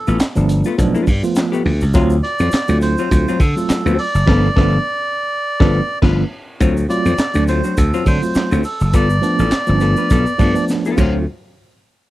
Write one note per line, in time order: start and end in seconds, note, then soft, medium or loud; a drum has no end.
0.00 0.17 A4 medium
0.07 0.19 A1 medium
0.07 0.20 A3 medium
0.07 0.20 B3 medium
0.07 0.20 F4 medium
0.07 shaker soft
0.20 muted slap bass stroke soft
0.20 snare loud
0.20 clap loud
0.20 closed hi-hat loud
0.20 shaker medium
0.35 0.62 G1 medium
0.35 0.65 F3 medium
0.35 0.66 A3 medium
0.35 0.66 B3 medium
0.35 0.66 D4 loud
0.35 muted hollow-body jazz guitar stroke soft
0.35 shaker medium
0.49 closed hi-hat medium
0.49 shaker medium
0.64 0.77 A3 medium
0.64 0.77 B3 medium
0.64 0.78 F4 medium
0.64 shaker medium
0.78 0.93 B1 loud
0.78 1.07 F3 loud
0.78 1.08 A3 medium
0.78 1.08 B3 medium
0.78 1.08 D4 loud
0.78 muted hollow-body jazz guitar stroke soft
0.78 kick medium
0.78 closed hi-hat medium
0.78 shaker medium
0.95 1.06 A3 medium
0.95 1.06 B3 medium
0.95 1.07 F4 medium
0.95 shaker soft
1.07 1.22 G2 medium
1.07 muted hollow-body jazz guitar stroke soft
1.07 kick medium
1.07 open hi-hat medium
1.07 shaker medium
1.23 1.71 F3 medium
1.23 1.71 A3 medium
1.23 1.72 B3 medium
1.23 1.72 F4 medium
1.23 muted hollow-body jazz guitar stroke soft
1.23 shaker medium
1.35 muted hollow-body jazz guitar stroke soft
1.35 snare loud
1.35 clap medium
1.35 closed hi-hat medium
1.35 shaker medium
1.52 1.63 A3 medium
1.52 1.64 B3 medium
1.52 1.65 G4 medium
1.52 shaker soft
1.65 1.84 D2 medium
1.65 muted hollow-body jazz guitar stroke soft
1.65 open hi-hat medium
1.81 1.95 C#2 medium
1.81 muted hollow-body jazz guitar stroke soft
1.81 shaker medium
1.94 2.20 D2 loud
1.94 2.15 F#3 loud
1.94 2.17 F#3 medium
1.94 2.15 A3 loud
1.94 2.16 C4 loud
1.94 2.17 C4 medium
1.94 2.16 F4 loud
1.94 2.17 F4 medium
1.94 kick loud
1.94 closed hi-hat medium
1.94 shaker medium
2.10 shaker medium
2.23 2.32 C4 soft
2.23 2.32 F#4 soft
2.23 2.78 D5 loud
2.23 muted hollow-body jazz guitar stroke medium
2.23 closed hi-hat medium
2.39 2.51 F2 loud
2.39 2.52 F#3 medium
2.39 2.52 C4 medium
2.39 2.53 F4 medium
2.39 shaker medium
2.52 muted slap bass stroke soft
2.52 muted hollow-body jazz guitar stroke medium
2.52 snare loud
2.52 clap loud
2.52 closed hi-hat loud
2.52 shaker medium
2.68 2.94 D2 loud
2.68 2.98 F#3 medium
2.68 2.99 A3 medium
2.68 2.99 C4 medium
2.68 2.99 F4 medium
2.68 shaker medium
2.81 3.42 C5 loud
2.81 closed hi-hat medium
2.81 shaker medium
2.98 3.10 F#3 medium
2.98 3.10 C4 medium
2.98 3.11 F4 medium
2.98 shaker medium
3.11 3.25 D2 loud
3.11 3.40 F#3 medium
3.11 3.41 A3 medium
3.11 3.41 C4 medium
3.11 3.41 F4 medium
3.11 muted hollow-body jazz guitar stroke soft
3.11 kick medium
3.11 closed hi-hat medium
3.11 shaker medium
3.28 3.39 F#3 medium
3.28 3.40 C4 medium
3.28 3.40 F4 medium
3.28 shaker soft
3.40 3.54 D3 medium
3.40 4.00 A4 medium
3.40 kick medium
3.40 open hi-hat medium
3.40 shaker medium
3.56 4.04 F#3 medium
3.56 4.04 A3 medium
3.56 4.04 C4 medium
3.56 4.05 F4 medium
3.56 muted hollow-body jazz guitar stroke soft
3.56 shaker medium
3.69 muted hollow-body jazz guitar stroke soft
3.69 muted slap bass stroke soft
3.69 snare loud
3.69 clap medium
3.69 closed hi-hat medium
3.69 shaker medium
3.86 3.97 D2 loud
3.86 3.97 F#3 medium
3.86 3.98 C4 medium
3.86 4.00 F#4 medium
3.86 shaker medium
3.99 5.98 D5 loud
3.99 muted hollow-body jazz guitar stroke soft
3.99 open hi-hat medium
4.15 4.27 F#1 medium
4.15 muted hollow-body jazz guitar stroke soft
4.15 shaker medium
4.26 4.48 G1 loud
4.26 4.47 F3 loud
4.26 4.48 A3 loud
4.26 4.48 B3 loud
4.26 4.48 D4 medium
4.26 4.48 F4 loud
4.26 4.49 A4 medium
4.26 kick loud
4.26 snare loud
4.26 crash medium
4.56 4.77 G1 loud
4.56 4.77 F3 loud
4.56 4.77 A3 loud
4.56 4.77 B3 medium
4.56 4.78 B3 loud
4.56 4.78 D4 loud
4.56 4.77 F4 loud
4.56 4.77 A4 loud
4.56 kick loud
4.56 snare loud
5.60 5.80 G1 loud
5.60 5.79 F3 loud
5.60 5.79 A3 loud
5.60 5.80 B3 medium
5.60 5.80 B3 loud
5.60 5.80 D4 loud
5.60 5.80 F4 loud
5.60 5.79 A4 loud
5.60 kick loud
5.60 snare loud
6.02 6.23 G1 loud
6.02 6.23 F3 medium
6.02 6.23 A3 medium
6.02 6.23 B3 medium
6.02 6.23 B3 loud
6.02 6.23 D4 medium
6.02 6.23 F4 loud
6.02 6.23 B4 loud
6.02 kick medium
6.02 snare medium
6.02 crash medium
6.60 6.86 D2 loud
6.60 6.82 F#3 medium
6.60 6.76 C4 medium
6.60 6.75 F4 medium
6.60 kick loud
6.60 closed hi-hat medium
6.60 shaker medium
6.76 6.83 C4 soft
6.76 6.83 F4 soft
6.76 muted hollow-body jazz guitar stroke soft
6.76 shaker medium
6.89 7.10 F#3 loud
6.89 7.10 A3 medium
6.89 7.10 C4 medium
6.89 7.10 F4 loud
6.89 7.44 D5 loud
6.89 muted hollow-body jazz guitar stroke soft
6.89 closed hi-hat medium
6.89 shaker medium
7.05 7.17 F2 loud
7.05 7.17 F#3 medium
7.05 7.18 C4 medium
7.05 7.18 F4 medium
7.05 shaker medium
7.18 muted slap bass stroke medium
7.18 snare loud
7.18 clap loud
7.18 closed hi-hat loud
7.18 shaker medium
7.34 7.60 D2 medium
7.34 7.82 F#3 medium
7.34 7.82 A3 medium
7.34 7.83 C4 medium
7.34 7.83 D4 medium
7.34 muted hollow-body jazz guitar stroke soft
7.34 shaker medium
7.48 7.64 F#3 medium
7.48 7.64 C4 medium
7.48 7.64 F4 medium
7.48 7.78 C5 loud
7.48 closed hi-hat medium
7.48 shaker medium
7.64 7.76 F#3 soft
7.64 7.76 C4 medium
7.64 7.77 F#4 medium
7.64 shaker medium
7.77 7.91 D2 loud
7.77 8.07 A4 medium
7.77 muted hollow-body jazz guitar stroke soft
7.77 kick medium
7.77 closed hi-hat medium
7.77 shaker medium
7.94 8.05 F#3 medium
7.94 8.05 C4 medium
7.94 8.06 F4 loud
7.94 shaker soft
8.05 8.20 D3 loud
8.05 8.17 F#3 medium
8.05 8.17 A3 medium
8.05 8.17 C4 medium
8.05 8.17 D4 loud
8.05 8.61 C5 loud
8.05 muted hollow-body jazz guitar stroke soft
8.05 kick medium
8.05 open hi-hat medium
8.05 shaker medium
8.21 8.60 F#3 medium
8.21 8.60 A3 medium
8.21 8.60 C4 medium
8.21 8.60 F4 medium
8.21 muted hollow-body jazz guitar stroke medium
8.21 shaker medium
8.35 muted hollow-body jazz guitar stroke soft
8.35 muted slap bass stroke soft
8.35 snare medium
8.35 clap medium
8.35 closed hi-hat medium
8.35 shaker medium
8.51 8.63 D2 medium
8.51 8.63 F#3 medium
8.51 8.64 C4 medium
8.51 8.65 F4 medium
8.51 shaker medium
8.64 8.94 A4 loud
8.64 muted hollow-body jazz guitar stroke soft
8.64 open hi-hat medium
8.64 shaker medium
8.80 8.94 F#1 medium
8.80 8.86 C4 soft
8.80 8.87 F4 soft
8.80 muted hollow-body jazz guitar stroke soft
8.80 shaker medium
8.94 9.19 G1 loud
8.94 9.15 B3 medium
8.94 9.10 F4 medium
8.94 9.10 A4 medium
8.94 10.65 D5 loud
8.94 kick loud
8.94 closed hi-hat medium
8.94 shaker medium
9.09 9.16 B3 soft
9.09 9.16 D4 soft
9.09 muted hollow-body jazz guitar stroke soft
9.09 shaker medium
9.22 9.43 F3 loud
9.22 9.43 A3 medium
9.22 9.43 B3 medium
9.22 9.43 D4 loud
9.22 muted hollow-body jazz guitar stroke soft
9.22 closed hi-hat medium
9.22 shaker medium
9.39 9.50 A1 medium
9.39 9.52 B3 medium
9.39 9.53 F4 medium
9.39 9.52 A4 medium
9.39 shaker medium
9.51 muted slap bass stroke soft
9.51 snare loud
9.51 clap loud
9.51 closed hi-hat loud
9.51 shaker medium
9.67 9.94 G1 medium
9.67 10.15 F3 loud
9.67 10.15 A3 medium
9.67 10.16 B3 medium
9.67 9.74 C#4 medium
9.67 muted hollow-body jazz guitar stroke soft
9.67 shaker medium
9.75 10.19 D4 medium
9.80 9.98 B3 medium
9.80 9.97 F4 medium
9.80 9.97 A4 medium
9.80 closed hi-hat medium
9.80 shaker medium
9.97 10.09 B3 soft
9.97 10.11 F4 medium
9.97 10.12 B4 medium
9.97 shaker medium
10.10 10.25 B1 medium
10.10 10.32 B3 medium
10.10 10.28 F4 medium
10.10 10.26 A4 medium
10.10 kick medium
10.10 closed hi-hat medium
10.10 shaker medium
10.26 muted hollow-body jazz guitar stroke soft
10.26 shaker soft
10.38 10.53 G2 loud
10.38 10.50 F3 loud
10.38 10.50 A3 loud
10.38 10.50 B3 loud
10.38 10.57 B3 medium
10.38 10.50 D4 loud
10.38 10.56 F4 medium
10.38 10.55 A4 medium
10.38 kick medium
10.38 open hi-hat medium
10.38 shaker medium
10.54 10.93 F3 medium
10.54 10.93 A3 medium
10.54 10.93 B3 medium
10.54 10.93 D4 medium
10.54 muted hollow-body jazz guitar stroke soft
10.54 shaker medium
10.68 muted hollow-body jazz guitar stroke soft
10.68 snare medium
10.68 shaker medium
10.85 10.99 B3 medium
10.85 10.98 F4 medium
10.85 10.98 A4 medium
10.85 shaker soft
10.97 11.25 D2 loud
10.97 11.24 F#3 medium
10.97 11.17 F#3 medium
10.97 11.24 A3 medium
10.97 11.24 C4 medium
10.97 11.17 C4 medium
10.97 11.24 F4 loud
10.97 11.18 F4 loud
10.97 kick loud
10.97 crash medium
10.97 shaker medium